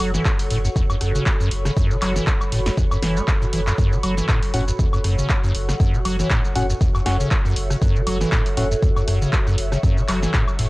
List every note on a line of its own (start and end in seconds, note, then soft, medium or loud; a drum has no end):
0.00 0.18 F#1 loud
0.00 0.12 F#3 medium
0.00 10.70 F#4 medium
0.00 3.77 A4 medium
0.00 10.70 C#5 medium
0.00 1.12 F#5 medium
0.00 open hi-hat loud
0.00 high woodblock medium
0.14 0.23 E3 medium
0.14 snare soft
0.14 shaker medium
0.25 kick loud
0.25 cross-stick medium
0.25 clap loud
0.25 shaker medium
0.39 open hi-hat medium
0.39 shaker soft
0.50 0.69 F#1 loud
0.50 0.58 A2 medium
0.50 open hi-hat loud
0.65 0.68 F#2 medium
0.65 shaker medium
0.76 0.83 E2 medium
0.76 kick loud
0.76 shaker medium
0.90 0.96 F#2 medium
0.90 high woodblock medium
0.90 shaker soft
1.01 1.19 F#1 medium
1.01 1.13 F#2 medium
1.01 cross-stick soft
1.01 open hi-hat loud
1.09 5.15 B5 medium
1.15 1.24 C#3 medium
1.15 shaker medium
1.26 kick loud
1.26 clap loud
1.26 shaker medium
1.40 1.49 F#2 medium
1.40 shaker soft
1.51 1.69 F#1 loud
1.51 open hi-hat loud
1.65 1.72 C#3 medium
1.65 cross-stick medium
1.65 snare soft
1.65 shaker medium
1.77 1.92 F#2 loud
1.77 kick loud
1.77 shaker medium
1.91 1.97 C#3 medium
1.91 shaker soft
2.02 2.20 F#1 loud
2.02 2.13 F#3 medium
2.02 clap medium
2.02 open hi-hat loud
2.02 high woodblock medium
2.16 2.25 E3 medium
2.16 snare soft
2.16 shaker medium
2.27 kick loud
2.27 cross-stick medium
2.27 clap loud
2.27 shaker medium
2.41 high woodblock medium
2.41 shaker soft
2.52 2.70 F#1 medium
2.52 2.60 A2 medium
2.52 open hi-hat loud
2.66 2.70 F#2 medium
2.66 snare medium
2.66 open hi-hat medium
2.66 shaker medium
2.77 2.85 E2 medium
2.77 kick loud
2.77 shaker medium
2.91 2.98 F#2 medium
2.91 high woodblock medium
2.91 shaker soft
3.03 3.21 F#1 loud
3.03 3.18 E3 medium
3.03 cross-stick soft
3.03 snare medium
3.03 open hi-hat loud
3.17 3.23 A3 loud
3.17 shaker medium
3.28 kick loud
3.28 clap loud
3.28 shaker medium
3.42 3.46 A2 medium
3.42 shaker soft
3.53 3.71 F#1 loud
3.53 3.61 E3 medium
3.53 open hi-hat loud
3.67 3.73 F#2 medium
3.67 clap medium
3.67 shaker medium
3.78 3.94 F#2 loud
3.78 10.70 A4 medium
3.78 kick loud
3.78 shaker medium
3.92 3.98 C#3 medium
3.92 shaker soft
4.03 4.22 F#1 loud
4.03 4.15 F#3 medium
4.03 open hi-hat loud
4.03 high woodblock medium
4.17 4.27 E3 medium
4.17 snare soft
4.17 shaker medium
4.29 4.40 A2 medium
4.29 kick loud
4.29 cross-stick medium
4.29 clap loud
4.29 shaker medium
4.43 open hi-hat medium
4.43 shaker soft
4.54 4.72 F#1 loud
4.54 4.62 A2 medium
4.54 4.65 C#4 medium
4.54 4.65 F#4 medium
4.54 4.65 F#5 medium
4.54 open hi-hat loud
4.68 4.72 F#2 medium
4.68 shaker medium
4.79 4.87 E2 medium
4.79 kick loud
4.79 shaker medium
4.93 4.99 F#2 medium
4.93 high woodblock medium
4.93 shaker soft
5.04 5.22 F#1 medium
5.04 5.16 F#2 medium
5.04 cross-stick soft
5.04 open hi-hat loud
5.12 6.71 F#5 medium
5.18 5.28 C#3 medium
5.18 shaker medium
5.29 kick loud
5.29 clap loud
5.29 shaker medium
5.44 5.53 F#2 loud
5.44 shaker soft
5.55 5.73 F#1 loud
5.55 open hi-hat loud
5.69 5.75 C#3 medium
5.69 cross-stick medium
5.69 snare soft
5.69 shaker medium
5.80 5.95 F#2 loud
5.80 kick loud
5.80 shaker medium
5.94 6.00 C#3 medium
5.94 shaker soft
6.05 6.23 F#1 loud
6.05 6.17 F#3 medium
6.05 open hi-hat loud
6.05 high woodblock medium
6.19 6.28 E3 medium
6.19 snare soft
6.19 shaker medium
6.30 6.42 A2 medium
6.30 kick loud
6.30 cross-stick medium
6.30 clap loud
6.30 shaker medium
6.45 shaker soft
6.52 6.74 F#1 loud
6.52 6.63 A2 medium
6.52 6.66 C#4 medium
6.52 6.66 F#4 medium
6.52 10.70 E5 medium
6.52 6.66 F#5 medium
6.52 open hi-hat loud
6.70 6.73 F#2 medium
6.70 shaker medium
6.81 6.89 E2 medium
6.81 kick loud
6.81 shaker medium
6.95 7.01 F#2 medium
6.95 high woodblock medium
6.95 shaker soft
7.06 7.24 F#1 medium
7.06 7.18 F#2 medium
7.06 7.17 C#4 medium
7.06 7.17 F#4 medium
7.06 7.17 F#5 medium
7.06 cross-stick soft
7.06 snare medium
7.06 open hi-hat loud
7.20 7.29 C#3 medium
7.20 shaker medium
7.31 kick loud
7.31 clap loud
7.31 shaker medium
7.45 7.54 F#2 loud
7.45 shaker soft
7.56 7.75 F#1 loud
7.56 open hi-hat loud
7.70 7.77 C#3 medium
7.70 cross-stick medium
7.70 shaker medium
7.82 7.97 F#2 loud
7.82 kick loud
7.82 shaker medium
7.96 8.02 C#3 medium
7.96 shaker soft
8.07 8.25 F#1 loud
8.07 8.18 F#3 medium
8.07 open hi-hat loud
8.07 high woodblock medium
8.21 8.30 E3 medium
8.21 snare soft
8.21 shaker medium
8.32 8.44 A2 medium
8.32 kick loud
8.32 cross-stick medium
8.32 clap loud
8.32 shaker medium
8.46 open hi-hat medium
8.46 shaker soft
8.57 8.75 F#1 loud
8.57 8.65 A2 medium
8.57 8.68 C#4 medium
8.57 8.68 F#4 medium
8.57 8.68 F#5 medium
8.57 open hi-hat loud
8.71 8.75 F#2 medium
8.71 shaker medium
8.82 8.90 E2 medium
8.82 kick loud
8.82 shaker medium
8.96 9.03 F#2 medium
8.96 high woodblock medium
8.96 shaker soft
9.08 9.26 F#1 medium
9.08 9.19 F#2 medium
9.08 cross-stick soft
9.08 open hi-hat loud
9.22 9.31 C#3 medium
9.22 shaker medium
9.33 kick loud
9.33 clap loud
9.33 shaker medium
9.47 9.56 F#2 loud
9.47 shaker soft
9.58 9.76 F#1 loud
9.58 open hi-hat loud
9.72 9.78 C#3 medium
9.72 cross-stick medium
9.72 snare soft
9.72 shaker medium
9.83 9.99 F#2 loud
9.83 kick loud
9.83 shaker medium
9.97 10.03 C#3 medium
9.97 shaker soft
10.08 10.27 F#1 medium
10.08 10.20 F#3 medium
10.08 clap medium
10.08 open hi-hat loud
10.08 high woodblock medium
10.22 10.32 E3 medium
10.22 snare soft
10.22 shaker medium
10.34 10.45 A2 medium
10.34 kick loud
10.34 cross-stick medium
10.34 clap loud
10.34 shaker medium
10.48 high woodblock medium
10.48 shaker soft
10.59 10.70 F#1 loud
10.59 10.67 A2 medium
10.59 open hi-hat loud